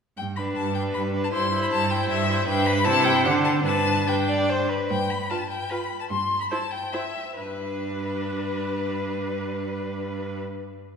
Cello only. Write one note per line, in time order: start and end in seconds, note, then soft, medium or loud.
0.18 0.52 G2 soft
0.56 0.90 G2 soft
0.95 1.29 G2 soft
1.34 1.68 G2 soft
1.72 2.06 G2 medium
2.10 2.43 G2 medium
2.48 2.88 G2 medium
2.86 3.27 C3 medium
3.26 3.66 D3 medium
3.66 4.68 G2 medium
4.90 5.22 G2 medium
6.10 6.42 G2 soft
7.38 10.38 G2 soft